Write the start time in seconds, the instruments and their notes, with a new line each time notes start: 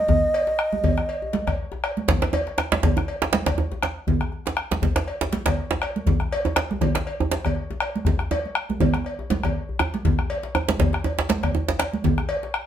Already playing: bansuri D#5
0.08 bombo rim, bombo low, djembe slap, djembe bass, low conga
0.23 high conga
0.33 bombo rim, cowbell, djembe slap
0.47 bombo rim, djembe slap
0.59 bombo rim
0.72 bombo rim, djembe tone, high conga
0.84 bombo low, cowbell, high conga, low conga, djembe bass
0.97 bombo rim, djembe slap
1.09 cowbell
1.22 djembe tone
1.33 djembe slap, high conga
1.47 bombo rim, bombo low, cowbell, djembe slap, djembe bass, low conga
1.72 bombo rim, djembe slap, djembe tone
1.84 bombo rim, cowbell
1.97 bombo rim, high conga
2.08 bombo low, djembe slap, djembe bass, low conga
2.22 bombo rim, djembe slap, djembe tone
2.33 bombo rim, cowbell, djembe slap, djembe tone
2.47 bombo rim, djembe slap
2.58 bombo rim, djembe slap
2.72 djembe slap, djembe tone, high conga
2.83 bombo rim, bombo low, cowbell, djembe slap, high conga, djembe bass, low conga
2.97 bombo rim, djembe slap, djembe tone
3.08 bombo rim, cowbell
3.22 djembe slap, djembe tone
3.33 djembe slap, high conga
3.46 bombo rim, bombo low, cowbell, djembe slap, low conga, djembe bass
3.58 bombo rim, djembe tone
3.72 djembe slap, djembe tone, high conga
3.83 bombo rim, djembe slap
4.07 bombo low, djembe slap, low conga, djembe bass
4.21 bombo rim, djembe tone
4.32 bombo rim, djembe slap
4.46 bombo rim, djembe slap
4.57 bombo rim
4.71 djembe slap, djembe tone, high conga
4.82 bombo rim, bombo low, high conga, djembe bass, low conga
4.96 bombo rim, djembe slap
5.07 bombo rim, cowbell
5.21 djembe slap, djembe tone
5.32 djembe slap, high conga
5.46 bombo rim, bombo low, cowbell, djembe slap, low conga, djembe bass
5.57 bombo rim
5.71 djembe slap, djembe tone, high conga
5.82 bombo rim, cowbell, djembe slap
5.96 high conga
6.06 bombo low, djembe slap, low conga, djembe bass
6.20 bombo rim, djembe tone
6.31 bombo rim, cowbell, djembe slap
6.45 bombo rim, djembe slap, djembe tone
6.56 bombo rim, djembe slap
6.70 bombo rim, high conga, djembe tone
6.81 bombo rim, bombo low, cowbell, djembe tone, high conga, low conga, djembe bass
6.95 bombo rim, djembe slap
7.06 bombo rim, cowbell
7.20 djembe tone
7.31 djembe slap
7.45 bombo rim, bombo low, cowbell, djembe bass, low conga
7.56 bombo rim
7.70 djembe slap, djembe tone, high conga
7.80 bombo rim, cowbell
7.96 high conga
8.05 bombo rim, bombo low, djembe slap, high conga, djembe bass, low conga
8.19 bombo rim, djembe slap, djembe tone
8.31 cowbell, djembe tone, high conga
8.45 high conga
8.55 bombo rim
8.69 djembe tone, high conga
8.80 bombo low, cowbell, djembe slap, djembe tone, djembe bass, low conga
8.94 bombo rim, djembe slap, high conga
9.05 bombo rim, cowbell
9.19 djembe tone
9.30 djembe slap, djembe tone, high conga
9.43 bombo rim, bombo low, cowbell, djembe bass, low conga
9.55 djembe slap
9.69 djembe bass
9.79 bombo rim, djembe slap, djembe tone
9.94 djembe slap, high conga
10.05 bombo low, djembe slap, djembe bass, low conga
10.18 bombo rim, djembe tone
10.30 bombo rim, cowbell, djembe slap
10.43 bombo rim, djembe slap
10.55 bombo rim, djembe tone
10.68 djembe slap, djembe tone, high conga
10.79 bombo rim, bombo low, cowbell, djembe slap, high conga, djembe bass, low conga
10.93 bombo rim, djembe slap
11.04 bombo rim, cowbell, djembe tone
11.18 djembe slap, djembe tone
11.29 djembe slap, high conga
11.43 bombo rim, bombo low, cowbell, low conga, djembe bass
11.55 bombo rim, djembe tone
11.68 djembe slap, djembe tone, high conga
11.79 bombo rim, cowbell, djembe slap
11.93 high conga
12.04 bombo low, djembe slap, low conga, djembe bass
12.18 bombo rim, djembe tone
12.29 bombo rim, cowbell, djembe slap
12.43 bombo rim, djembe slap
12.54 bombo rim